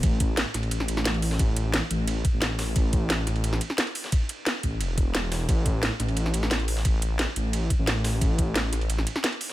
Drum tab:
RD |x-x-x-xxx-x-xxx-|x-x-x-x-x-x-x-x-|x-x-x-xxx-x-xxx-|x-x-x-x-x-x-x-x-|
HH |x-x-x-x-x-x-x-o-|x-x-x-x-x-x-x-o-|x-x-x-x-x-x-x-o-|x-x-x-x-x-x-x-o-|
SD |----o-o--o-oo--o|----o-------o-o-|----o-o--o-oo--o|----o-------o-o-|
BD |o-o-------------|o---------o-----|o-o-------------|o-----o---o-----|

RD |x-x-x-xxx-x-xxx-|x-x-x-x-x-x-x-x-|x-x-x-xxx-x-xxx-|
HH |x-x-x-x-x-x-x-o-|x-x-x-x-x-x-x-o-|x-x-x-x-x-x-x-o-|
SD |----o-o--o-oo--o|----o-------o-o-|----o-o--o-oo--o|
BD |o-o-------------|o---------o-----|o-o-------------|